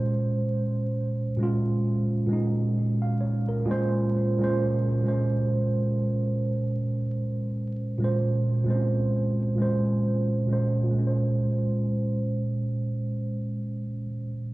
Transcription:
0, 0, Header, 1, 2, 480
1, 0, Start_track
1, 0, Key_signature, -5, "minor"
1, 0, Tempo, 909091
1, 18, Time_signature, 4, 2, 24, 8
1, 7677, End_track
2, 0, Start_track
2, 0, Title_t, "Tine electric piano"
2, 0, Program_c, 0, 4
2, 0, Control_c, 0, 64, 127
2, 0, Note_on_c, 0, 46, 82
2, 0, Note_on_c, 0, 56, 76
2, 0, Note_on_c, 0, 61, 78
2, 0, Note_on_c, 0, 72, 93
2, 670, Note_off_c, 0, 46, 0
2, 675, Note_off_c, 0, 56, 0
2, 680, Note_off_c, 0, 61, 0
2, 685, Note_off_c, 0, 72, 0
2, 723, Note_on_c, 0, 46, 72
2, 735, Note_on_c, 0, 56, 69
2, 743, Note_on_c, 0, 61, 72
2, 755, Note_on_c, 0, 65, 86
2, 1180, Note_off_c, 0, 46, 0
2, 1186, Note_off_c, 0, 56, 0
2, 1190, Note_off_c, 0, 61, 0
2, 1196, Note_off_c, 0, 65, 0
2, 1198, Note_on_c, 0, 46, 82
2, 1208, Note_on_c, 0, 56, 74
2, 1219, Note_on_c, 0, 61, 71
2, 1230, Note_on_c, 0, 63, 83
2, 1594, Note_on_c, 0, 77, 61
2, 1693, Note_off_c, 0, 77, 0
2, 1693, Note_on_c, 0, 73, 61
2, 1825, Note_off_c, 0, 73, 0
2, 1841, Note_on_c, 0, 70, 63
2, 1882, Note_off_c, 0, 46, 0
2, 1888, Note_off_c, 0, 56, 0
2, 1893, Note_off_c, 0, 61, 0
2, 1898, Note_off_c, 0, 63, 0
2, 1929, Note_on_c, 0, 46, 105
2, 1940, Note_on_c, 0, 56, 84
2, 1945, Control_c, 0, 64, 0
2, 1949, Note_on_c, 0, 61, 93
2, 1960, Note_on_c, 0, 72, 112
2, 2024, Control_c, 0, 64, 127
2, 2066, Note_off_c, 0, 70, 0
2, 2280, Note_off_c, 0, 46, 0
2, 2285, Note_off_c, 0, 56, 0
2, 2290, Note_off_c, 0, 61, 0
2, 2295, Note_off_c, 0, 72, 0
2, 2310, Note_on_c, 0, 46, 75
2, 2319, Note_on_c, 0, 56, 66
2, 2329, Note_on_c, 0, 61, 74
2, 2341, Note_on_c, 0, 72, 93
2, 2633, Note_off_c, 0, 46, 0
2, 2637, Note_off_c, 0, 56, 0
2, 2643, Note_off_c, 0, 61, 0
2, 2649, Note_off_c, 0, 72, 0
2, 2650, Note_on_c, 0, 46, 70
2, 2659, Note_on_c, 0, 56, 65
2, 2670, Note_on_c, 0, 61, 62
2, 2683, Note_on_c, 0, 72, 75
2, 3553, Note_off_c, 0, 46, 0
2, 3558, Note_off_c, 0, 56, 0
2, 3563, Note_off_c, 0, 61, 0
2, 3569, Note_off_c, 0, 72, 0
2, 4213, Note_on_c, 0, 46, 78
2, 4223, Note_on_c, 0, 56, 67
2, 4234, Note_on_c, 0, 61, 65
2, 4245, Note_on_c, 0, 72, 79
2, 4545, Note_off_c, 0, 46, 0
2, 4550, Note_off_c, 0, 56, 0
2, 4555, Note_off_c, 0, 61, 0
2, 4561, Note_off_c, 0, 72, 0
2, 4564, Note_on_c, 0, 46, 75
2, 4574, Note_on_c, 0, 56, 65
2, 4585, Note_on_c, 0, 60, 55
2, 4595, Note_on_c, 0, 72, 73
2, 4618, Note_on_c, 0, 61, 67
2, 4621, Note_off_c, 0, 60, 0
2, 5020, Note_off_c, 0, 46, 0
2, 5026, Note_off_c, 0, 56, 0
2, 5036, Note_off_c, 0, 72, 0
2, 5046, Note_on_c, 0, 46, 69
2, 5048, Note_off_c, 0, 61, 0
2, 5059, Note_on_c, 0, 56, 72
2, 5068, Note_on_c, 0, 61, 65
2, 5078, Note_on_c, 0, 72, 82
2, 5502, Note_off_c, 0, 46, 0
2, 5508, Note_off_c, 0, 56, 0
2, 5513, Note_off_c, 0, 61, 0
2, 5518, Note_off_c, 0, 72, 0
2, 5526, Note_on_c, 0, 46, 62
2, 5537, Note_on_c, 0, 56, 60
2, 5548, Note_on_c, 0, 61, 55
2, 5557, Note_on_c, 0, 72, 73
2, 5710, Note_off_c, 0, 46, 0
2, 5717, Note_on_c, 0, 46, 66
2, 5752, Note_off_c, 0, 56, 0
2, 5758, Note_on_c, 0, 56, 62
2, 5768, Note_off_c, 0, 61, 0
2, 5772, Note_off_c, 0, 72, 0
2, 5784, Control_c, 0, 64, 0
2, 5801, Note_on_c, 0, 61, 64
2, 5845, Note_on_c, 0, 72, 73
2, 5887, Control_c, 0, 64, 127
2, 7307, Note_off_c, 0, 46, 0
2, 7349, Note_off_c, 0, 56, 0
2, 7391, Note_off_c, 0, 61, 0
2, 7435, Note_off_c, 0, 72, 0
2, 7677, End_track
0, 0, End_of_file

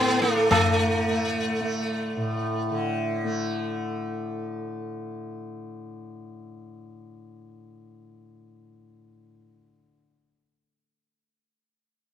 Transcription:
0, 0, Header, 1, 4, 480
1, 0, Start_track
1, 0, Tempo, 571429
1, 434, Time_signature, 5, 2, 24, 8
1, 10194, End_track
2, 0, Start_track
2, 0, Title_t, "Sitar"
2, 0, Program_c, 0, 104
2, 0, Note_on_c, 0, 59, 105
2, 68, Note_on_c, 0, 69, 42
2, 179, Note_off_c, 0, 59, 0
2, 183, Note_on_c, 0, 57, 89
2, 290, Note_off_c, 0, 69, 0
2, 300, Note_on_c, 0, 69, 45
2, 412, Note_off_c, 0, 57, 0
2, 426, Note_on_c, 0, 57, 87
2, 531, Note_off_c, 0, 69, 0
2, 4062, Note_off_c, 0, 57, 0
2, 10194, End_track
3, 0, Start_track
3, 0, Title_t, "Tanpura"
3, 0, Program_c, 1, 104
3, 0, Note_on_c, 1, 45, 73
3, 0, Note_on_c, 1, 50, 64
3, 0, Note_on_c, 1, 57, 66
3, 436, Note_off_c, 1, 50, 0
3, 436, Note_on_c, 1, 50, 67
3, 900, Note_off_c, 1, 57, 0
3, 900, Note_on_c, 1, 57, 69
3, 1348, Note_off_c, 1, 57, 0
3, 1348, Note_on_c, 1, 57, 71
3, 1816, Note_off_c, 1, 45, 0
3, 1819, Note_on_c, 1, 45, 67
3, 2272, Note_off_c, 1, 50, 0
3, 2272, Note_on_c, 1, 50, 66
3, 2716, Note_off_c, 1, 57, 0
3, 2719, Note_on_c, 1, 57, 66
3, 7825, Note_off_c, 1, 45, 0
3, 7846, Note_off_c, 1, 57, 0
3, 8278, Note_off_c, 1, 50, 0
3, 10194, End_track
4, 0, Start_track
4, 0, Title_t, "Tabla"
4, 196, Note_on_c, 9, 62, 88
4, 280, Note_off_c, 9, 62, 0
4, 434, Note_on_c, 9, 60, 109
4, 434, Note_on_c, 9, 64, 108
4, 518, Note_off_c, 9, 60, 0
4, 518, Note_off_c, 9, 64, 0
4, 10194, End_track
0, 0, End_of_file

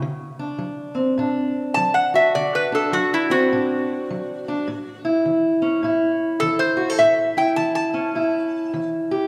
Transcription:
0, 0, Header, 1, 3, 480
1, 0, Start_track
1, 0, Tempo, 579710
1, 33, Time_signature, 4, 2, 24, 8
1, 7679, End_track
2, 0, Start_track
2, 0, Title_t, "Resonator guitar played with a steel bar"
2, 0, Program_c, 0, 25
2, 1443, Note_on_c, 0, 81, 96
2, 1608, Note_on_c, 0, 78, 86
2, 1616, Note_off_c, 0, 81, 0
2, 1778, Note_off_c, 0, 78, 0
2, 1783, Note_on_c, 0, 76, 85
2, 1942, Note_off_c, 0, 76, 0
2, 1945, Note_on_c, 0, 74, 86
2, 2108, Note_off_c, 0, 74, 0
2, 2112, Note_on_c, 0, 71, 81
2, 2271, Note_off_c, 0, 71, 0
2, 2275, Note_on_c, 0, 69, 80
2, 2428, Note_on_c, 0, 66, 84
2, 2432, Note_off_c, 0, 69, 0
2, 2589, Note_off_c, 0, 66, 0
2, 2598, Note_on_c, 0, 64, 82
2, 2743, Note_on_c, 0, 66, 84
2, 2755, Note_off_c, 0, 64, 0
2, 4159, Note_off_c, 0, 66, 0
2, 5298, Note_on_c, 0, 69, 92
2, 5458, Note_on_c, 0, 72, 92
2, 5463, Note_off_c, 0, 69, 0
2, 5778, Note_off_c, 0, 72, 0
2, 5784, Note_on_c, 0, 76, 98
2, 6101, Note_off_c, 0, 76, 0
2, 6108, Note_on_c, 0, 79, 86
2, 6259, Note_off_c, 0, 79, 0
2, 6262, Note_on_c, 0, 81, 88
2, 6409, Note_off_c, 0, 81, 0
2, 6419, Note_on_c, 0, 81, 89
2, 7357, Note_off_c, 0, 81, 0
2, 7679, End_track
3, 0, Start_track
3, 0, Title_t, "Steel-string acoustic guitar"
3, 0, Program_c, 1, 25
3, 18, Note_on_c, 1, 50, 77
3, 326, Note_on_c, 1, 62, 60
3, 471, Note_off_c, 1, 50, 0
3, 484, Note_on_c, 1, 54, 60
3, 784, Note_on_c, 1, 60, 58
3, 945, Note_off_c, 1, 54, 0
3, 973, Note_on_c, 1, 45, 64
3, 981, Note_off_c, 1, 62, 0
3, 984, Note_on_c, 1, 62, 60
3, 1430, Note_off_c, 1, 45, 0
3, 1465, Note_on_c, 1, 54, 61
3, 1771, Note_on_c, 1, 66, 69
3, 1916, Note_off_c, 1, 54, 0
3, 1922, Note_off_c, 1, 60, 0
3, 1931, Note_off_c, 1, 62, 0
3, 1949, Note_on_c, 1, 50, 80
3, 2254, Note_on_c, 1, 62, 64
3, 2398, Note_off_c, 1, 50, 0
3, 2421, Note_on_c, 1, 54, 64
3, 2731, Note_on_c, 1, 60, 58
3, 2875, Note_off_c, 1, 54, 0
3, 2911, Note_off_c, 1, 62, 0
3, 2917, Note_on_c, 1, 45, 62
3, 2921, Note_on_c, 1, 62, 59
3, 3363, Note_off_c, 1, 45, 0
3, 3398, Note_on_c, 1, 54, 67
3, 3699, Note_off_c, 1, 62, 0
3, 3711, Note_on_c, 1, 62, 64
3, 3843, Note_off_c, 1, 54, 0
3, 3855, Note_off_c, 1, 60, 0
3, 3865, Note_off_c, 1, 62, 0
3, 3871, Note_on_c, 1, 45, 78
3, 3878, Note_off_c, 1, 66, 0
3, 4179, Note_on_c, 1, 64, 65
3, 4320, Note_off_c, 1, 45, 0
3, 4352, Note_on_c, 1, 52, 62
3, 4653, Note_on_c, 1, 61, 58
3, 4800, Note_off_c, 1, 52, 0
3, 4825, Note_on_c, 1, 45, 66
3, 4833, Note_off_c, 1, 64, 0
3, 4837, Note_on_c, 1, 64, 60
3, 5275, Note_off_c, 1, 45, 0
3, 5318, Note_on_c, 1, 52, 65
3, 5604, Note_on_c, 1, 66, 72
3, 5709, Note_off_c, 1, 66, 0
3, 5709, Note_on_c, 1, 69, 54
3, 5762, Note_off_c, 1, 52, 0
3, 5774, Note_off_c, 1, 61, 0
3, 5786, Note_on_c, 1, 45, 79
3, 5799, Note_off_c, 1, 69, 0
3, 6099, Note_off_c, 1, 64, 0
3, 6102, Note_on_c, 1, 64, 61
3, 6235, Note_off_c, 1, 45, 0
3, 6270, Note_on_c, 1, 52, 64
3, 6572, Note_on_c, 1, 61, 59
3, 6717, Note_off_c, 1, 52, 0
3, 6749, Note_on_c, 1, 45, 61
3, 6751, Note_off_c, 1, 64, 0
3, 6755, Note_on_c, 1, 64, 57
3, 7195, Note_off_c, 1, 45, 0
3, 7233, Note_on_c, 1, 52, 66
3, 7546, Note_on_c, 1, 67, 66
3, 7677, Note_off_c, 1, 52, 0
3, 7679, Note_off_c, 1, 61, 0
3, 7679, Note_off_c, 1, 64, 0
3, 7679, Note_off_c, 1, 67, 0
3, 7679, End_track
0, 0, End_of_file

